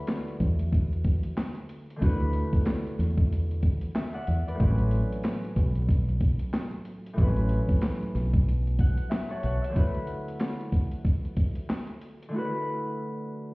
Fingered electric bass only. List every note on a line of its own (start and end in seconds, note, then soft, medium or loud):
0.40 1.20 E2 medium
2.02 2.42 D2 loud
2.99 3.78 E2 medium
4.28 4.43 E2 medium
4.60 5.01 A1 loud
5.56 6.36 B1 loud
7.18 7.59 A1 loud
8.15 8.94 B1 loud
9.44 9.59 B1 medium